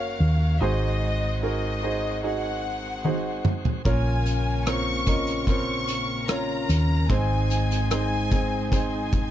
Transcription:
Already playing: fingered electric bass F#1, tonewheel organ A#3 C#4 F#4, grand piano C#4 F#4 A#4 C#5 D#5, violin section F5
0.20 fingered electric bass D#2
0.61 fingered electric bass G#1, grand piano G#2 D#4 F#4 G#4 C5, tonewheel organ G#3 C4, violin section D#5
1.42 grand piano D#4 F#4 G#4 A#4, violin section D#5
1.83 grand piano D#4 F#4 G#4 C5
2.23 grand piano D#4 F#4 G#4 D#5, violin section F#5
3.04 grand piano D#4 F#4 G#4 C5, high tom
3.44 fingered electric bass F1, mid tom
3.65 floor tom
3.85 fingered electric bass A#1, grand piano A#2 C#4 F4 A#4 C#5, clean electric guitar A#2 A#4, tonewheel organ C#3 A#3 F4, violin section G#5, kick, closed hi-hat
4.26 clean electric guitar C#4, closed hi-hat
4.66 grand piano C4 C#4 F4 A#4, clean electric guitar C#4 F4 A#4, violin section C#6, cross-stick, closed hi-hat
5.06 grand piano C#4 F4 A#4 D#5, clean electric guitar F4, kick, closed hi-hat
5.27 closed hi-hat
5.47 grand piano C4 C#4 F4 A#4, clean electric guitar A#4, violin section C#6, kick, closed hi-hat
5.88 closed hi-hat
6.28 grand piano C#4 F4 A#4 C#5, clean electric guitar C#4 F4 A#4, violin section A#5, cross-stick, closed hi-hat
6.69 fingered electric bass D#2, closed hi-hat
7.09 fingered electric bass G#1, grand piano G#2 C4 D#4 G#4 C5, clean electric guitar G#2 C5, tonewheel organ G#3 C4 D#4, violin section G#5, kick, closed hi-hat
7.50 clean electric guitar C4, closed hi-hat
7.71 closed hi-hat
7.90 grand piano C4 D#4 G#4 C5, clean electric guitar C4 D#4 C5, violin section G#5, cross-stick, closed hi-hat
8.31 grand piano C4 D#4 G#4 D#5, clean electric guitar D#4, kick, closed hi-hat
8.71 grand piano C4 D#4 G#4 C5, clean electric guitar C5, violin section G#5, kick, closed hi-hat
9.12 kick, closed hi-hat

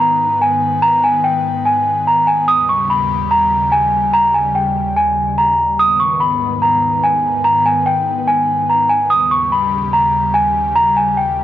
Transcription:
Already playing: analog synth pad G#2 D#3 B3
0.00 celesta A#5
0.41 celesta G#5
0.82 celesta A#5
1.04 celesta G#5
1.24 celesta G5
1.65 celesta G#5
2.07 celesta A#5
2.27 celesta G#5
2.48 analog synth pad D#2 C#3 G3, celesta D#6
2.69 celesta C#6
2.90 celesta B5
3.31 celesta A#5
3.72 celesta G#5
4.13 celesta A#5
4.34 celesta G#5
4.55 celesta G5
4.96 celesta G#5
5.38 celesta A#5
5.79 analog synth pad G#2 D#3 B3, celesta D#6
6.00 celesta C#6
6.20 celesta B5
6.62 celesta A#5
7.04 celesta G#5
7.44 celesta A#5
7.66 celesta G#5
7.86 celesta G5
8.27 celesta G#5
8.69 celesta A#5
8.89 celesta G#5
9.10 analog synth pad D#2 C#3 G3, celesta D#6
9.31 celesta C#6
9.52 celesta B5
9.93 celesta A#5
10.34 celesta G#5
10.76 celesta A#5
10.96 celesta G#5
11.17 celesta G5

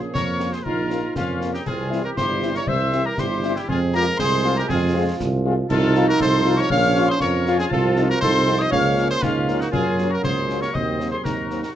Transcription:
Already playing: trombone section F3 A#3, euphonium C#4, woodwind section G#4
0.14 tuba F2, euphonium A#3, woodwind section A#4, cornet C#5, piccolo C#6, concert bass drum, snare
0.39 french horn section A#3 C#4 F4, snare
0.53 woodwind section G#4, cornet C5, piccolo C6, snare
0.64 tuba A#1, euphonium D#4, woodwind section F4, cornet A#4, piccolo A#5, concert bass drum
0.89 french horn section A#3 C#4 F4, snare
1.16 tuba F2, euphonium C#4, woodwind section C#4, cornet F4, piccolo F5, concert bass drum, snare
1.40 french horn section A#3 C#4 F4, snare
1.54 woodwind section D#4, cornet G4, piccolo G5, snare
1.66 tuba C2, trombone section E3 G3, euphonium C4, woodwind section F4, cornet G#4, piccolo G#5, concert bass drum, crash
1.90 french horn section G3 C4 E4, snare
2.04 woodwind section G4, cornet A#4, piccolo A#5
2.16 tuba G1, euphonium E4, woodwind section G4, cornet C5, piccolo C6, concert bass drum, snare
2.42 french horn section G3 C4 E4, snare
2.55 woodwind section A#4, cornet C#5, piccolo C#6, snare
2.67 tuba C2, woodwind section C5, cornet E5, piccolo E6, concert bass drum
2.92 french horn section G3 C4 E4, snare
3.05 woodwind section G4, cornet A#4, piccolo A#5
3.17 tuba G1, euphonium E4, woodwind section G4, cornet C5, piccolo C6, concert bass drum, snare
3.43 french horn section G3 C4 E4, snare
3.56 woodwind section E4, cornet G4, piccolo G5, snare
3.68 tuba F2, trombone section F3 G#3, euphonium C4, woodwind section F4, cornet G#4, piccolo G#5, concert bass drum
3.93 french horn section G#3 C4 F4, woodwind section G4, cornet A#4, piccolo A#5, snare
4.17 tuba C2, euphonium G#3, woodwind section G#4, cornet C5, piccolo C6, concert bass drum, snare
4.43 french horn section G#3 C4 F4, snare
4.56 woodwind section G4, cornet A#4, piccolo A#5, snare
4.68 tuba F2, euphonium C4, woodwind section F4, cornet G#4, piccolo G#5, concert bass drum, snare
4.94 french horn section G#3 C4 F4, euphonium F4
5.20 tuba C2, concert bass drum, snare
5.44 french horn section G#3 C4 F4
5.69 tuba C2, trombone section F3 D#4, euphonium D#4, woodwind section F4, cornet A4, piccolo A5, concert bass drum, crash
5.95 french horn section F3 D#4 F4, snare
6.08 woodwind section F#4, cornet A#4, piccolo A#5
6.19 tuba C2, woodwind section A4, cornet C5, piccolo C6, concert bass drum, snare
6.45 french horn section F3 D#4 F4, snare
6.56 woodwind section A#4, piccolo C#6, snare
6.60 cornet C#5
6.69 tuba A#1, euphonium C#4, trombone section C#4, woodwind section C#5, cornet F5, piccolo F6, concert bass drum
6.95 french horn section F3 C#4 F4, snare
7.08 woodwind section G#4, cornet C5, piccolo C6
7.20 tuba F2, euphonium F4, woodwind section A#4, cornet C#5, piccolo C#6, concert bass drum, snare
7.46 french horn section F3 C#4 F4, snare
7.57 woodwind section F4, cornet G#4, piccolo G#5, snare
7.70 tuba C2, trombone section F3 C4, euphonium F4, woodwind section F4, cornet A4, piccolo A5, concert bass drum
7.96 french horn section F3 C4 D#4, snare
8.09 woodwind section F#4, cornet A#4, piccolo A#5
8.21 tuba C2, euphonium D#4, woodwind section A4, cornet C5, piccolo C6, concert bass drum, snare
8.46 french horn section F3 C4 D#4, snare
8.59 woodwind section C5, cornet D#5, piccolo D#6, snare
8.71 tuba C#2, trombone section A#3, euphonium C#4, woodwind section C#5, cornet F5, piccolo F6, concert bass drum
8.97 french horn section F3 A#3 C#4, snare
9.10 woodwind section G#4, cornet C5, piccolo C6
9.22 tuba C#2, woodwind section C#4, euphonium D#4, cornet F4, piccolo F5, concert bass drum, snare
9.47 french horn section F3 A#3 C#4, snare
9.60 woodwind section D#4, cornet F#4, piccolo F#5, snare
9.72 tuba F#2, trombone section F#3, euphonium C#4, woodwind section F4, cornet G#4, piccolo G#5, concert bass drum, crash
9.98 french horn section F#3 A#3 C#4, snare
10.10 woodwind section F#4, cornet A#4, piccolo A#5
10.23 tuba C#2, woodwind section G#4, cornet C5, piccolo C6, concert bass drum, snare
10.49 french horn section F#3 A#3 C#4, snare
10.62 woodwind section A#4, cornet C#5, piccolo C#6, snare
10.73 tuba D#2, trombone section C4, euphonium C4, woodwind section C5, cornet D#5, piccolo D#6, concert bass drum
10.99 french horn section F#3 A#3 C4, snare
11.11 woodwind section G#4, cornet C5, piccolo C6
11.23 tuba D#2, euphonium D#4, woodwind section F#4, cornet A#4, piccolo A#5, concert bass drum, snare
11.50 french horn section F#3 A#3 C4, snare
11.63 woodwind section F#4, cornet A#4, piccolo A#5, snare

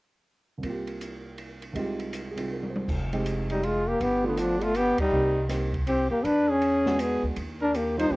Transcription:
0.58 grand piano C2 C3
0.63 grand piano A#3 F4, kick, ride
0.69 grand piano G4
0.87 ride
1.01 hi-hat pedal, ride
1.38 ride
1.62 ride
1.73 grand piano C2 C3 G#3 D#4, kick, ride
1.78 grand piano F4 G4
2.00 ride
2.13 hi-hat pedal, ride
2.31 grand piano G#4
2.36 grand piano C3 G3 C4 D#4 F4, ride
2.51 grand piano A#4
2.63 high tom
2.70 grand piano C5
2.76 high tom
2.88 upright bass F1, kick, crash
3.13 grand piano G#3 C4 D#4 G4, ride
3.26 hi-hat pedal, ride
3.50 trombone G3, trumpet D#4, ride
3.63 trombone G#3, trumpet F4, ride
3.88 trombone A#3, trumpet G4
4.00 upright bass G1, trombone B3, trumpet G4, kick, ride
4.24 trombone D3, grand piano A3 B3 D4 F4
4.28 trumpet B3
4.37 trombone F3, trumpet D4, hi-hat pedal, ride
4.61 trombone A3, trumpet F4, ride
4.75 trombone B3, trumpet G4, hi-hat pedal, ride
4.98 trombone G3, trumpet D#4, muted upright bass stroke, kick, ride
5.11 upright bass C2, grand piano A#3 C4 D#4 G4
5.49 grand piano A#3 C4 D#4 G4, snare, hi-hat pedal, ride
5.74 kick, ride
5.87 trombone C4, trumpet G4, ride
6.10 upright bass D#2, trombone A#3, trumpet G4
6.23 upright bass E2, trombone D4, trumpet B4, kick, ride
6.48 trombone C#4, trumpet G#4
6.62 ride
6.86 grand piano G#3 B3 D4 F#4, snare
6.99 trombone B3, trumpet G#4, hi-hat pedal, ride
7.23 upright bass D2
7.36 upright bass D#2, kick, ride
7.61 trombone D4, trumpet A#4
7.74 trombone A#3, trumpet G4, hi-hat pedal, ride
7.97 grand piano G3 A#3 D4 F4, trombone D#4, trumpet C5, ride
8.10 upright bass D2, trombone C4, trumpet G4

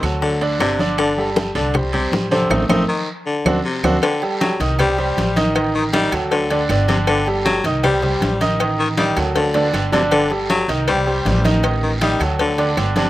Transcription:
0.02 upright bass D2, grand piano F#3 F#4 A4, high bongo, high conga, high timbale, short guiro, claves
0.22 baritone saxophone D3, high bongo, high conga, long guiro
0.41 grand piano D3 D4 D5, high bongo, high conga, high timbale
0.60 upright bass G1, baritone saxophone C3, grand piano D3 D4 D5, high bongo, low bongo, high conga, high timbale, low timbale, short guiro, claves
0.79 grand piano D3 D4 D5, high bongo, high conga, short guiro
0.98 baritone saxophone D3, high bongo, high conga, high timbale, long guiro, claves
1.17 grand piano G3 G4 A4, high conga
1.36 high bongo, high conga, high timbale, short guiro
1.55 upright bass C2, baritone saxophone D3, grand piano D3 D4 D5, high conga, high timbale, short guiro
1.74 grand piano G3 G4 C5, high bongo, high conga, low conga, high timbale, long guiro, claves
1.93 baritone saxophone C3, grand piano G3 G4 C5, high conga, low conga, high timbale
2.12 upright bass A1, high bongo, low bongo, high conga, low timbale, short guiro
2.31 grand piano C3 C4 C5, baritone saxophone D3, high conga, high timbale, short guiro
2.50 upright bass A1, grand piano A3 C4 D#4, low bongo, high conga, high timbale, long guiro, claves
2.69 upright bass A1, grand piano A3 C4 D#4, low bongo, high conga, high timbale, long guiro, claves
2.89 baritone saxophone D#3
3.26 baritone saxophone D3
3.45 upright bass D2, grand piano C4 D4 F#4, low bongo, high conga, high timbale, long guiro, claves
3.65 baritone saxophone C3
3.83 upright bass D2, grand piano C4 D4 F#4, low bongo, high conga, high timbale, long guiro, claves
4.02 baritone saxophone D3, cowbell, high conga, low agogo, long guiro, claves
4.22 grand piano G3 G4 A4, high conga, low agogo
4.40 baritone saxophone F#3, cowbell, high conga, low agogo, short guiro
4.60 upright bass C2, grand piano D#3 D#4 D#5, cowbell, high conga, short guiro
4.79 baritone saxophone G3, grand piano G3 G4 C5, cowbell, high conga, low conga, low agogo, long guiro, claves
4.98 grand piano G3 G4 C5, high conga, low agogo
5.17 upright bass A1, cowbell, high conga, low timbale, short guiro
5.36 grand piano D#3 D#4 D#5, cowbell, high conga, low agogo, short guiro
5.55 grand piano D#3 D#4 D#5, cowbell, high conga, low agogo, long guiro, claves
5.75 baritone saxophone D#3, high conga
5.93 grand piano D#3 D#4 D#5, baritone saxophone G3, cowbell, high conga, low agogo, short guiro
6.12 upright bass D2, grand piano F#3 F#4 A4, cowbell, high conga, low agogo, short guiro, claves
6.31 baritone saxophone D3, cowbell, high conga, long guiro
6.50 grand piano D3 D4 D5, cowbell, high conga, low agogo
6.69 upright bass G1, grand piano D3 D4 D5, cowbell, high conga, low timbale, low agogo, short guiro, claves
6.88 baritone saxophone C3, grand piano D3 D4 D5, cowbell, high conga, low agogo, short guiro
7.07 baritone saxophone D3, cowbell, high conga, low agogo, long guiro, claves
7.26 grand piano G3 G4 A4, high conga, low agogo
7.45 baritone saxophone F#3, cowbell, high conga, low agogo, short guiro
7.64 upright bass C2, grand piano D#3 D#4 D#5, cowbell, high conga, short guiro
7.83 baritone saxophone G3, grand piano G3 G4 C5, cowbell, high conga, low conga, low agogo, long guiro, claves
8.02 grand piano G3 G4 C5, high conga, low conga, low agogo
8.21 upright bass A1, cowbell, high conga, short guiro
8.41 grand piano D#3 D#4 D#5, cowbell, high conga, low agogo, short guiro
8.60 grand piano D#3 D#4 D#5, cowbell, high conga, low agogo, long guiro, claves
8.79 baritone saxophone D#3, high conga
8.97 grand piano D#3 D#4 D#5, baritone saxophone G3, cowbell, high conga, low agogo, short guiro
9.16 upright bass D2, grand piano F#3 F#4 A4, cowbell, high conga, high timbale, low agogo, short guiro, claves
9.35 baritone saxophone D3, cowbell, high conga, high timbale, long guiro
9.54 grand piano D3 D4 D5, cowbell, high conga, low timbale, low agogo
9.73 upright bass G1, grand piano D3 D4 D5, cowbell, high conga, low timbale, low agogo, short guiro, claves
9.92 baritone saxophone C3, grand piano D3 D4 D5, cowbell, high conga, low timbale, low agogo, short guiro
10.11 baritone saxophone D3, cowbell, high conga, low agogo, long guiro, claves
10.30 grand piano G3 G4 A4, high conga, low agogo
10.50 baritone saxophone F#3, cowbell, high conga, low agogo, short guiro
10.68 upright bass C2, grand piano D#3 D#4 D#5, cowbell, high conga, short guiro
10.88 grand piano G3 G4 C5, baritone saxophone G3, cowbell, high conga, low conga, low agogo, long guiro, claves
11.06 grand piano G3 G4 C5, high conga, low agogo
11.25 upright bass A1, cowbell, high conga, low timbale, short guiro
11.44 grand piano D#3 D#4 D#5, cowbell, high conga, low agogo, short guiro
11.63 grand piano D#3 D#4 D#5, cowbell, high conga, low agogo, long guiro, claves
11.83 baritone saxophone D#3, high conga
12.01 grand piano D#3 D#4 D#5, baritone saxophone G3, cowbell, high conga, low agogo, short guiro
12.20 upright bass D2, grand piano F#3 F#4 A4, cowbell, high conga, low agogo, short guiro, claves
12.39 baritone saxophone D3, cowbell, high conga, long guiro
12.58 grand piano D3 D4 D5, cowbell, high conga, low agogo
12.77 upright bass G1, grand piano D3 D4 D5, cowbell, high conga, low timbale, low agogo, short guiro, claves
12.96 baritone saxophone C3, grand piano D3 D4 D5, cowbell, high conga, low agogo, short guiro

